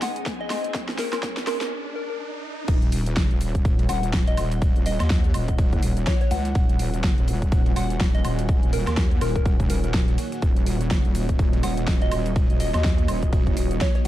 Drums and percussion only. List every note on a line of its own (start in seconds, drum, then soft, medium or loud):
0.02 snare medium
0.02 open hi-hat loud
0.02 high woodblock medium
0.16 closed hi-hat medium
0.26 kick loud
0.26 snare medium
0.26 closed hi-hat medium
0.50 snare medium
0.50 open hi-hat loud
0.50 high woodblock medium
0.64 closed hi-hat medium
0.74 kick loud
0.74 snare medium
0.74 closed hi-hat soft
0.89 snare medium
0.99 snare medium
0.99 open hi-hat loud
1.13 snare medium
1.13 closed hi-hat medium
1.13 high woodblock medium
1.23 kick loud
1.23 snare loud
1.23 closed hi-hat medium
1.37 snare medium
1.47 snare medium
1.47 open hi-hat loud
1.47 high woodblock medium
1.61 snare medium
1.61 closed hi-hat medium
2.68 kick loud
2.68 crash loud
2.68 ride medium
2.68 shaker soft
2.82 closed hi-hat medium
2.92 open hi-hat loud
2.92 ride medium
2.92 shaker medium
3.06 closed hi-hat medium
3.06 shaker soft
3.16 kick loud
3.16 snare loud
3.16 ride medium
3.16 shaker soft
3.31 closed hi-hat soft
3.41 open hi-hat loud
3.41 ride medium
3.41 shaker medium
3.55 kick medium
3.55 closed hi-hat medium
3.55 shaker soft
3.65 kick loud
3.65 ride medium
3.65 shaker soft
3.79 closed hi-hat soft
3.79 ride soft
3.89 snare soft
3.89 open hi-hat loud
3.89 ride medium
3.89 high woodblock medium
3.89 shaker medium
4.03 closed hi-hat medium
4.03 shaker soft
4.13 kick loud
4.13 snare loud
4.13 ride medium
4.13 shaker soft
4.27 closed hi-hat medium
4.27 ride soft
4.37 open hi-hat loud
4.37 ride medium
4.37 high woodblock medium
4.37 shaker medium
4.52 closed hi-hat medium
4.52 ride soft
4.52 shaker soft
4.62 kick loud
4.62 ride medium
4.62 shaker soft
4.76 closed hi-hat medium
4.86 open hi-hat loud
4.86 ride medium
4.86 shaker medium
5.00 snare soft
5.00 closed hi-hat medium
5.00 high woodblock medium
5.00 shaker soft
5.10 kick loud
5.10 snare loud
5.10 ride medium
5.10 shaker soft
5.24 closed hi-hat soft
5.34 open hi-hat loud
5.34 ride medium
5.34 high woodblock medium
5.34 shaker medium
5.48 kick medium
5.48 closed hi-hat medium
5.48 shaker soft
5.58 kick loud
5.58 ride medium
5.58 shaker soft
5.73 kick medium
5.73 closed hi-hat soft
5.83 open hi-hat loud
5.83 ride medium
5.83 shaker medium
5.97 closed hi-hat medium
5.97 shaker soft
6.07 kick loud
6.07 snare loud
6.07 ride medium
6.07 shaker soft
6.21 snare soft
6.21 closed hi-hat medium
6.31 snare medium
6.31 open hi-hat loud
6.31 ride medium
6.31 shaker medium
6.45 snare soft
6.45 closed hi-hat medium
6.45 shaker soft
6.55 kick loud
6.55 ride medium
6.55 shaker soft
6.69 closed hi-hat medium
6.79 open hi-hat loud
6.79 ride medium
6.79 shaker medium
6.94 closed hi-hat medium
6.94 shaker soft
7.03 kick loud
7.03 snare loud
7.03 ride medium
7.03 shaker soft
7.18 closed hi-hat soft
7.28 open hi-hat loud
7.28 ride medium
7.28 shaker medium
7.42 kick medium
7.42 closed hi-hat medium
7.42 shaker soft
7.52 kick loud
7.52 ride medium
7.52 shaker soft
7.66 closed hi-hat soft
7.66 ride soft
7.76 snare soft
7.76 open hi-hat loud
7.76 ride medium
7.76 high woodblock medium
7.76 shaker medium
7.90 closed hi-hat medium
7.90 shaker soft
8.00 kick loud
8.00 snare loud
8.00 ride medium
8.00 shaker soft
8.15 closed hi-hat medium
8.15 ride soft
8.24 open hi-hat loud
8.24 ride medium
8.24 high woodblock medium
8.24 shaker medium
8.39 closed hi-hat medium
8.39 ride soft
8.39 shaker soft
8.49 kick loud
8.49 ride medium
8.49 shaker soft
8.63 closed hi-hat medium
8.73 open hi-hat loud
8.73 ride medium
8.73 shaker medium
8.87 snare soft
8.87 closed hi-hat medium
8.87 high woodblock medium
8.87 shaker soft
8.97 kick loud
8.97 snare loud
8.97 ride medium
8.97 shaker soft
9.11 closed hi-hat soft
9.21 open hi-hat loud
9.21 ride medium
9.21 high woodblock medium
9.21 shaker medium
9.36 kick medium
9.36 closed hi-hat medium
9.36 shaker soft
9.45 kick loud
9.45 ride medium
9.45 shaker soft
9.60 kick medium
9.60 closed hi-hat soft
9.60 shaker soft
9.70 open hi-hat loud
9.70 ride medium
9.70 shaker medium
9.84 closed hi-hat medium
9.84 shaker soft
9.94 kick loud
9.94 snare loud
9.94 ride medium
9.94 shaker soft
10.08 snare soft
10.08 closed hi-hat soft
10.18 snare medium
10.18 open hi-hat loud
10.18 ride medium
10.18 shaker medium
10.32 snare soft
10.32 closed hi-hat medium
10.32 shaker soft
10.42 kick loud
10.42 ride medium
10.42 shaker soft
10.56 closed hi-hat medium
10.66 open hi-hat loud
10.66 ride medium
10.66 shaker medium
10.81 closed hi-hat medium
10.81 shaker soft
10.91 kick loud
10.91 snare loud
10.91 ride medium
10.91 shaker soft
11.05 closed hi-hat soft
11.15 open hi-hat loud
11.15 ride medium
11.15 shaker medium
11.29 kick medium
11.29 closed hi-hat medium
11.29 shaker soft
11.39 kick loud
11.39 ride medium
11.39 shaker soft
11.53 closed hi-hat soft
11.53 ride soft
11.63 snare soft
11.63 open hi-hat loud
11.63 ride medium
11.63 high woodblock medium
11.63 shaker medium
11.77 closed hi-hat medium
11.77 shaker soft
11.87 kick loud
11.87 snare loud
11.87 ride medium
11.87 shaker soft
12.02 closed hi-hat soft
12.02 ride soft
12.11 open hi-hat loud
12.11 ride medium
12.11 high woodblock medium
12.11 shaker medium
12.26 closed hi-hat medium
12.26 ride soft
12.26 shaker soft
12.36 kick loud
12.36 ride medium
12.36 shaker soft
12.50 closed hi-hat medium
12.60 open hi-hat loud
12.60 ride medium
12.60 shaker medium
12.74 snare soft
12.74 closed hi-hat medium
12.74 high woodblock medium
12.74 shaker soft
12.84 kick loud
12.84 snare loud
12.84 ride medium
12.84 shaker soft
12.98 closed hi-hat soft
13.08 open hi-hat loud
13.08 ride medium
13.08 high woodblock medium
13.08 shaker medium
13.23 kick medium
13.23 closed hi-hat medium
13.23 shaker soft
13.33 kick loud
13.33 ride medium
13.33 shaker soft
13.47 kick medium
13.47 closed hi-hat soft
13.57 open hi-hat loud
13.57 ride medium
13.57 shaker medium
13.71 closed hi-hat medium
13.71 shaker soft
13.81 kick loud
13.81 snare loud
13.81 ride medium
13.81 shaker soft
13.95 snare soft
13.95 closed hi-hat medium